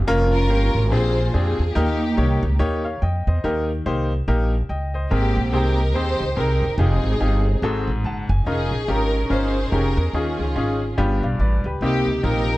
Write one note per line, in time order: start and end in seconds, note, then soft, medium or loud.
0.07 0.50 F1 loud
0.07 0.33 A#3 loud
0.07 0.33 C#4 medium
0.07 0.33 F4 loud
0.07 0.33 A#4 loud
0.33 0.88 C#4 medium
0.33 0.88 F4 medium
0.33 0.88 A#4 loud
0.50 0.72 G1 medium
0.50 0.75 A#3 medium
0.50 0.75 C#4 medium
0.50 0.75 F4 medium
0.50 0.75 G4 medium
0.75 0.92 G#1 loud
0.91 1.27 A#1 medium
0.91 1.55 A#2 medium
0.91 1.17 C4 medium
0.91 1.17 D4 medium
0.91 1.72 F4 medium
0.91 1.17 G4 medium
0.91 1.33 G#4 medium
0.91 1.17 G#4 medium
0.91 1.34 C5 medium
1.34 1.55 F2 medium
1.34 1.59 C4 medium
1.34 1.73 C4 medium
1.34 1.59 D4 medium
1.34 1.73 D4 medium
1.34 1.59 G4 medium
1.34 1.59 G#4 medium
1.34 1.76 G#4 medium
1.59 1.73 E2 medium
1.75 2.12 D#2 loud
1.75 2.39 D#3 medium
1.75 2.01 A#3 medium
1.75 2.56 A#3 medium
1.75 2.01 D#4 medium
1.75 2.56 D#4 medium
1.75 2.01 G4 medium
1.75 2.43 G4 medium
1.75 2.01 A#4 loud
2.17 2.39 C2 loud
2.17 2.43 A#3 medium
2.17 2.43 D#4 medium
2.17 2.43 G4 medium
2.17 2.43 C#5 medium
2.43 2.57 C#2 loud
2.59 2.95 D#2 loud
2.59 2.85 A#3 medium
2.59 2.85 D#4 medium
2.59 2.85 G4 medium
2.59 2.84 C#5 medium
2.85 3.01 C#5 soft
2.85 3.01 F5 medium
3.02 3.23 F2 medium
3.02 3.26 D#5 medium
3.02 3.26 G5 medium
3.27 3.41 E2 medium
3.27 3.67 C5 soft
3.27 3.67 D#5 medium
3.44 3.79 D#2 medium
3.44 4.07 D#3 medium
3.44 3.69 A#3 medium
3.44 3.69 D#4 medium
3.44 3.69 G4 medium
3.44 3.69 A#4 medium
3.86 4.21 C2 medium
3.86 4.11 A#3 medium
3.86 4.11 D#4 medium
3.86 4.11 G4 medium
3.86 4.11 C5 medium
4.28 4.63 A#1 medium
4.28 4.53 A#3 medium
4.28 4.53 D#4 medium
4.28 4.53 G4 medium
4.28 4.53 A#4 medium
4.69 5.05 C#2 medium
4.69 4.93 D#5 medium
4.69 4.93 G5 medium
4.94 5.35 C5 medium
4.94 5.34 D#5 medium
5.11 5.33 G#1 medium
5.11 5.74 G#2 medium
5.11 5.91 A#3 medium
5.11 5.36 C4 medium
5.11 5.91 C4 medium
5.11 5.36 G4 medium
5.11 5.50 G4 medium
5.11 5.37 G#4 medium
5.11 5.36 A#4 medium
5.37 5.53 A#1 medium
5.52 5.95 C2 medium
5.52 5.78 C4 medium
5.52 5.93 D#4 medium
5.52 5.93 G4 medium
5.52 5.79 G4 medium
5.52 5.79 G#4 medium
5.52 5.94 A#4 medium
5.52 5.79 C5 medium
5.94 6.16 D#2 loud
5.94 6.21 C4 medium
5.94 6.36 D#4 medium
5.94 6.36 G4 medium
5.94 6.21 G4 medium
5.94 6.21 G#4 medium
5.94 6.36 C5 loud
5.94 6.21 C5 medium
6.20 6.35 C#2 medium
6.36 6.58 C2 medium
6.36 6.62 C4 medium
6.36 6.76 D#4 medium
6.36 6.62 G4 medium
6.36 6.76 G4 medium
6.36 6.62 G#4 medium
6.36 6.62 A#4 medium
6.36 6.79 A#4 medium
6.62 6.76 F#1 medium
6.78 7.00 F1 loud
6.78 7.59 C4 medium
6.78 7.04 D#4 medium
6.78 7.59 D#4 medium
6.78 7.04 F4 medium
6.78 7.04 G4 medium
6.78 7.04 G#4 medium
6.78 7.59 G#4 medium
7.04 7.18 G#1 medium
7.20 7.56 G1 medium
7.20 7.46 D#4 medium
7.20 7.46 F4 medium
7.20 7.46 G4 medium
7.20 7.46 G#4 medium
7.62 7.84 G#1 loud
7.62 8.26 G#2 medium
7.62 7.88 C4 medium
7.62 7.88 F#4 medium
7.62 7.88 G#4 medium
7.62 7.88 A4 medium
7.87 8.02 A1 medium
8.04 8.26 F#1 medium
8.04 8.29 F#5 medium
8.04 8.29 A5 medium
8.29 8.44 F#1 loud
8.29 8.69 G#5 medium
8.46 8.68 F1 medium
8.46 8.72 C#4 medium
8.46 8.87 C#4 medium
8.46 8.72 D#4 medium
8.46 8.87 D#4 medium
8.46 8.72 F4 medium
8.46 8.86 G#4 medium
8.46 8.72 A#4 medium
8.71 8.86 A#1 medium
8.88 9.24 G#1 medium
8.88 9.14 C#4 medium
8.88 9.68 C#4 medium
8.88 9.13 D#4 medium
8.88 9.29 D#4 medium
8.88 9.13 F4 medium
8.88 9.14 G4 medium
8.88 9.30 A#4 loud
9.30 9.66 G1 medium
9.30 9.55 C#4 medium
9.30 9.55 D#4 medium
9.30 9.71 D#4 medium
9.30 9.55 F4 medium
9.30 10.10 G#4 medium
9.30 9.56 A#4 medium
9.30 9.72 C5 medium
9.72 9.93 F1 medium
9.72 9.97 C#4 medium
9.72 10.11 C#4 medium
9.72 9.97 D#4 medium
9.72 10.11 D#4 medium
9.72 9.97 F4 medium
9.72 9.98 G4 medium
9.72 10.14 A#4 medium
9.97 10.11 E2 loud
10.13 10.35 D#2 medium
10.13 10.77 D#3 medium
10.13 10.39 C#4 medium
10.13 10.94 C#4 medium
10.13 10.39 D#4 medium
10.13 10.39 F4 medium
10.13 10.94 F4 medium
10.13 10.39 G#4 medium
10.13 10.98 G#4 medium
10.39 10.53 C#2 medium
10.56 10.91 G#1 medium
10.56 10.81 C#4 medium
10.56 10.81 D#4 medium
10.56 10.81 F4 medium
10.56 10.81 G#4 medium
10.98 11.19 G1 loud
10.98 11.61 G2 medium
10.98 11.23 B3 medium
10.98 11.23 D4 medium
10.98 11.23 F4 medium
10.98 11.23 G4 medium
11.23 11.37 B1 medium
11.23 11.39 D5 soft
11.23 11.39 F5 medium
11.39 11.61 A1 medium
11.39 11.64 B4 medium
11.39 11.64 D5 medium
11.64 11.79 C#2 medium
11.64 11.81 G4 soft
11.64 12.05 B4 medium
11.81 12.02 C2 medium
11.81 12.45 C3 medium
11.81 12.57 A#3 medium
11.81 12.07 A#3 medium
11.81 12.07 C4 medium
11.81 12.23 D#4 medium
11.81 12.07 D#4 medium
11.81 12.07 G4 medium
11.81 12.21 G4 medium
12.06 12.21 C#2 medium
12.23 12.57 A#1 medium
12.23 12.48 A#3 medium
12.23 12.49 C4 medium
12.23 12.49 D#4 medium
12.23 12.57 D#4 medium
12.23 12.49 F4 medium
12.23 12.57 G4 medium
12.23 12.57 A#4 loud